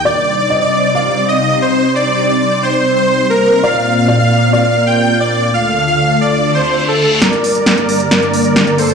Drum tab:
HH |----------------|----------------|----------------|----------------|
SD |----------------|----------------|----------------|----------------|

HH |xxoxxxoxxxoxxxox|
SD |o---o---o---o---|